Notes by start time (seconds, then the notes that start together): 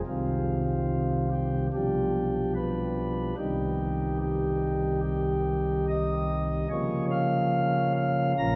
0.06 C2 C3 D#3 G3 C4 F4
1.31 G4
1.73 B1 B2 F3 G3 D4 G4
2.55 B4
3.37 C2 C3 D#3 G3 D#4 G4
4.21 G4
5.03 G4
5.89 D#5
6.70 C#3 F3 A#3 C#4 C#5
7.11 F5
7.96 F5
8.38 A#1 A#2 F3 A#3 C#4 A#5